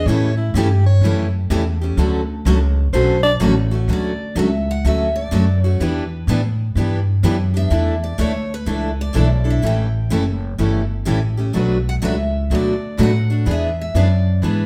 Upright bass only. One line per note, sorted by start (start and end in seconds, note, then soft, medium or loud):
0.06 0.52 A2 medium
0.54 1.00 G2 medium
1.01 1.48 F#2 medium
1.50 1.96 E2 loud
1.97 2.44 D2 medium
2.45 2.92 C#2 loud
2.93 3.39 B1 medium
3.40 3.87 A1 loud
3.88 4.34 D2 medium
4.35 4.82 C#2 medium
4.84 5.31 D2 medium
5.32 5.78 F#2 medium
5.80 6.26 E2 medium
6.27 6.74 A2 medium
6.75 7.22 G2 medium
7.23 7.70 F#2 medium
7.71 8.17 E2 medium
8.19 8.65 D2 medium
8.66 9.13 C#2 medium
9.15 9.61 B1 medium
9.63 10.09 A1 medium
10.11 10.57 F#1 medium
10.58 11.05 G1 medium
11.07 11.53 A1 medium
11.55 12.01 B1 medium
12.02 12.49 C#2 medium
12.50 12.97 D2 medium
12.99 13.45 A2 medium
13.46 13.93 E2 medium
13.95 14.41 F#2 medium
14.43 14.66 G#2 medium